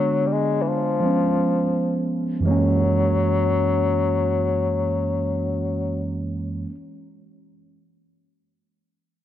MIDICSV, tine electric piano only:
0, 0, Header, 1, 2, 480
1, 0, Start_track
1, 0, Tempo, 500000
1, 8870, End_track
2, 0, Start_track
2, 0, Title_t, "Tine electric piano"
2, 0, Program_c, 0, 4
2, 0, Note_on_c, 0, 50, 64
2, 0, Note_on_c, 0, 56, 60
2, 0, Note_on_c, 0, 59, 62
2, 0, Note_on_c, 0, 62, 70
2, 937, Note_off_c, 0, 50, 0
2, 945, Note_off_c, 0, 56, 0
2, 953, Note_off_c, 0, 59, 0
2, 956, Note_on_c, 0, 53, 60
2, 961, Note_off_c, 0, 62, 0
2, 972, Note_on_c, 0, 56, 56
2, 991, Note_on_c, 0, 59, 59
2, 1006, Note_on_c, 0, 61, 68
2, 2302, Note_on_c, 0, 42, 83
2, 2310, Note_off_c, 0, 53, 0
2, 2319, Note_off_c, 0, 56, 0
2, 2327, Note_on_c, 0, 52, 71
2, 2328, Note_off_c, 0, 59, 0
2, 2336, Note_off_c, 0, 61, 0
2, 2354, Note_on_c, 0, 56, 76
2, 2379, Note_on_c, 0, 58, 71
2, 2405, Note_on_c, 0, 61, 92
2, 6371, Note_off_c, 0, 42, 0
2, 6396, Note_off_c, 0, 52, 0
2, 6423, Note_off_c, 0, 56, 0
2, 6448, Note_off_c, 0, 58, 0
2, 6475, Note_off_c, 0, 61, 0
2, 8870, End_track
0, 0, End_of_file